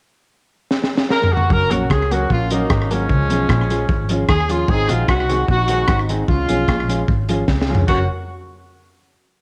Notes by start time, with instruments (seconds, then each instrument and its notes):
0.71 snare
0.84 snare
0.97 snare
1.10 horn section A#4, snare
1.23 floor tom
1.32 horn section F#4
1.37 floor tom
1.50 fingered electric bass F#1, clean electric guitar F#2, horn section C#4 F#4 A#4, kick
1.70 fingered electric bass A#1, clean electric guitar A#2 F#3 A#3 C#4 F#4, upright piano C#4 F#4 A#4, horn section F#4, closed hi-hat
1.90 fingered electric bass C#2, clean electric guitar C#3, horn section G#4, kick, cross-stick
2.11 clean electric guitar F#3 A#3 C#4 F#4, upright piano C#4 F#4 A#4, horn section F#4, closed hi-hat
2.30 fingered electric bass A#1, clean electric guitar A#2, horn section A#3 C#4 F4, kick
2.50 horn section F#3 A#3 D#4, clean electric guitar F#3 A#3 C#4 F#4, upright piano C#4 F#4 A#4, closed hi-hat
2.69 fingered electric bass G#1, clean electric guitar G#2, kick, cross-stick
2.90 horn section F3 G#3 C#4, clean electric guitar F#3 A#3 C#4 F#4, upright piano C#4 F#4 A#4, closed hi-hat
3.09 fingered electric bass C#2, clean electric guitar C#3, kick
3.30 fingered electric bass B1, clean electric guitar B2 F3 G#3 C#4 F4, upright piano C#4 F4 G#4, closed hi-hat
3.48 fingered electric bass A#1, clean electric guitar A#2, kick, cross-stick
3.70 clean electric guitar F3 G#3 C#4 F4, upright piano C#4 F4 G#4, closed hi-hat
3.89 fingered electric bass G#1, clean electric guitar G#2, kick
4.09 clean electric guitar F3 G#3 C#4 F4, upright piano C#4 F4 G#4, closed hi-hat
4.28 fingered electric bass D#2, clean electric guitar D#3, horn section G#4, kick, cross-stick
4.49 clean electric guitar F3 G#3 C#4 F4, upright piano C#4 F4 G#4, horn section F4, closed hi-hat
4.68 fingered electric bass G#1, clean electric guitar G#2, horn section C4 D#4 G#4, kick
4.89 fingered electric bass A#1, clean electric guitar A#2 D#3 G#3 C4 F#4, upright piano C4 F#4 G#4, horn section F4, closed hi-hat
5.08 fingered electric bass C2, clean electric guitar C3, horn section C4 D#4 F#4, kick, cross-stick
5.29 clean electric guitar D#3 G#3 C4 F#4, upright piano C4 F#4 G#4, closed hi-hat
5.48 fingered electric bass A#1, clean electric guitar A#2, horn section C4 D#4 F#4, kick
5.68 clean electric guitar D#3 G#3 C4 F#4, upright piano C4 F#4 G#4, closed hi-hat
5.88 fingered electric bass G#1, clean electric guitar G#2, kick, cross-stick
6.09 clean electric guitar D#3 G#3 C4 F#4, upright piano C4 F#4 G#4, closed hi-hat
6.28 fingered electric bass C#2, clean electric guitar C#3, horn section G#3 C#4 F4, kick
6.48 fingered electric bass B1, clean electric guitar B2 F3 G#3 C#4 F4, upright piano C#4 F4 G#4, closed hi-hat
6.68 fingered electric bass A#1, clean electric guitar A#2, kick, cross-stick
6.88 clean electric guitar F3 G#3 C#4 F4, upright piano C#4 F4 G#4, closed hi-hat
7.08 fingered electric bass G#1, clean electric guitar G#2, kick
7.29 clean electric guitar F3 G#3 C#4 F4, upright piano C#4 F4 G#4, closed hi-hat
7.48 fingered electric bass C#2, clean electric guitar C#3, kick, snare
7.62 snare
7.68 clean electric guitar F3 G#3 C#4 F4, upright piano C#4 F4 G#4
7.75 floor tom
7.88 fingered electric bass F#1, clean electric guitar F#3 A#3 C#4 F#4, upright piano C#4 F#4 A#4, horn section F#4, kick, crash